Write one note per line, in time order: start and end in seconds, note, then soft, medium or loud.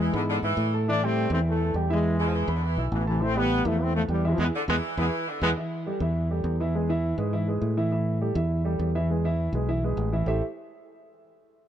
0.00 0.41 E3 medium
0.00 0.14 E3 medium
0.00 0.40 G#3 medium
0.14 0.41 G#2 loud
0.14 0.21 D3 loud
0.14 0.38 B3 medium
0.14 0.38 B4 medium
0.14 0.38 B5 medium
0.29 0.36 D3 loud
0.42 0.56 G#2 medium
0.42 0.77 E3 loud
0.42 0.67 E4 medium
0.42 0.68 E5 medium
0.42 0.68 E6 medium
0.57 1.25 A2 loud
0.74 0.85 A3 medium
0.74 0.85 A4 medium
0.74 0.86 A5 medium
0.88 1.00 E3 medium
0.88 1.02 A3 medium
0.88 1.01 D4 loud
0.88 1.00 E4 medium
0.88 1.00 E5 medium
1.03 1.26 G3 medium
1.03 1.31 A3 medium
1.03 1.32 C4 loud
1.03 1.27 G4 medium
1.03 1.27 G5 medium
1.30 1.71 E2 loud
1.30 1.56 E3 medium
1.30 1.39 A3 medium
1.30 1.39 C4 loud
1.30 1.56 E4 medium
1.30 1.56 E5 medium
1.47 1.74 E3 medium
1.47 1.74 A3 medium
1.61 1.73 A3 medium
1.61 1.73 A4 medium
1.61 1.73 A5 medium
1.74 2.42 E2 medium
1.74 1.87 G3 medium
1.74 1.87 G4 medium
1.74 1.88 G5 medium
1.90 2.14 E3 medium
1.90 2.45 E3 medium
1.90 2.46 G#3 medium
1.90 2.14 E4 medium
1.90 2.14 E5 loud
2.19 2.26 E3 loud
2.19 2.43 G#3 medium
2.19 2.44 G#4 medium
2.19 2.44 G#5 medium
2.26 2.34 F3 loud
2.33 2.54 E3 medium
2.48 2.75 E2 loud
2.48 2.72 B3 medium
2.48 2.72 B4 medium
2.48 2.73 B5 medium
2.54 2.62 D3 medium
2.63 2.85 E3 medium
2.77 2.91 B1 medium
2.77 3.02 E4 medium
2.77 3.02 E5 medium
2.77 3.02 E6 medium
2.92 3.60 A1 loud
2.92 3.07 B2 medium
2.92 3.06 E3 medium
3.07 3.21 C3 medium
3.07 3.21 E3 loud
3.07 3.19 A3 medium
3.07 3.19 A4 medium
3.07 3.19 A5 medium
3.21 3.33 E3 medium
3.21 3.37 A3 loud
3.21 3.36 C4 loud
3.21 3.34 E4 medium
3.21 3.34 E5 medium
3.36 3.60 G3 medium
3.36 3.66 G3 medium
3.36 3.66 B3 loud
3.36 3.60 G4 medium
3.36 3.61 G5 medium
3.65 4.06 E2 loud
3.65 3.90 E3 medium
3.65 3.81 F3 medium
3.65 3.81 A3 loud
3.65 3.90 E4 medium
3.65 3.90 E5 medium
3.82 3.94 A3 medium
3.82 3.96 C4 loud
3.95 4.02 F3 medium
3.95 4.07 A3 medium
3.95 4.02 A3 loud
3.95 4.07 A4 medium
3.95 4.07 A5 medium
4.08 4.36 E2 medium
4.08 4.24 E3 medium
4.08 4.22 G3 medium
4.08 4.24 G3 loud
4.08 4.22 G4 medium
4.08 4.22 G5 medium
4.24 4.36 E3 medium
4.24 4.32 E3 medium
4.24 4.32 G#3 loud
4.24 4.37 E4 medium
4.24 4.37 E5 medium
4.32 4.39 F3 medium
4.38 4.49 E2 medium
4.38 4.44 E3 loud
4.38 4.44 G#3 loud
4.38 4.46 B3 loud
4.38 4.49 E4 loud
4.38 4.49 G#4 medium
4.38 4.49 B4 medium
4.55 4.61 D3 loud
4.68 4.79 E2 medium
4.68 4.75 E3 loud
4.68 4.96 E3 loud
4.68 4.75 G#3 loud
4.68 4.75 B3 loud
4.68 4.78 E4 medium
4.68 4.78 G#4 medium
4.68 4.78 B4 loud
4.97 5.09 E2 loud
4.97 5.25 E3 loud
4.97 5.05 E3 loud
4.97 5.05 G#3 medium
4.97 5.05 B3 medium
4.97 5.08 E4 loud
4.97 5.07 G#4 loud
4.97 5.07 B4 loud
5.28 5.57 D3 medium
5.42 5.53 E2 loud
5.42 5.49 E3 loud
5.42 5.49 G#3 loud
5.42 5.49 B3 loud
5.42 5.52 E4 medium
5.42 5.52 G#4 medium
5.42 5.51 B4 medium
5.57 5.81 E3 medium
5.57 5.81 E4 medium
5.57 5.81 E5 medium
5.86 5.98 G3 medium
5.86 5.98 G4 medium
5.86 5.99 A4 medium
6.00 6.42 E2 loud
6.00 6.25 E3 medium
6.00 6.25 E4 medium
6.00 6.26 E5 medium
6.31 6.55 G3 medium
6.31 6.55 G4 medium
6.31 6.55 A4 medium
6.44 7.12 E2 loud
6.60 6.72 E3 medium
6.60 6.72 E4 medium
6.60 6.73 E5 medium
6.75 6.87 G#3 medium
6.75 6.87 G#4 medium
6.75 6.87 B4 medium
6.89 7.13 E3 loud
6.89 7.13 E4 loud
6.89 7.14 E5 loud
7.18 7.59 G#2 medium
7.18 7.30 G#3 medium
7.18 7.30 G#4 medium
7.18 7.30 B4 medium
7.33 7.45 E3 medium
7.33 7.45 E4 medium
7.33 7.45 E5 medium
7.48 7.72 G#3 medium
7.48 7.72 G#4 medium
7.48 7.72 B4 medium
7.62 8.30 A2 medium
7.77 7.89 E3 medium
7.77 7.89 E4 medium
7.77 7.89 E5 medium
7.92 8.16 E3 medium
7.92 8.16 E4 medium
7.92 8.16 E5 medium
8.21 8.33 G3 medium
8.21 8.33 G4 medium
8.21 8.34 A4 medium
8.35 8.77 E2 loud
8.35 8.60 E3 medium
8.35 8.60 E4 medium
8.35 8.60 E5 medium
8.65 8.89 G3 medium
8.65 8.89 G4 medium
8.65 8.89 A4 medium
8.79 9.48 E2 loud
8.95 9.07 E3 medium
8.95 9.07 E4 medium
8.95 9.07 E5 loud
9.10 9.22 G#3 medium
9.10 9.22 G#4 medium
9.10 9.22 B4 medium
9.25 9.48 E3 medium
9.25 9.49 E4 loud
9.25 9.49 E5 loud
9.53 9.94 B1 medium
9.53 9.66 G#3 medium
9.53 9.66 G#4 medium
9.53 9.66 B4 medium
9.68 9.80 E3 medium
9.68 9.81 E4 loud
9.68 9.81 E5 medium
9.84 10.07 G#3 medium
9.84 10.08 G#4 medium
9.84 10.08 B4 medium
9.97 10.23 A1 medium
10.12 10.24 E3 medium
10.12 10.25 E4 medium
10.12 10.25 E5 medium
10.26 10.40 A1 medium
10.26 10.40 A3 medium
10.26 10.41 E4 medium
10.26 10.41 G4 medium
10.26 10.41 A4 medium
10.26 10.41 C5 medium
10.26 10.41 E5 loud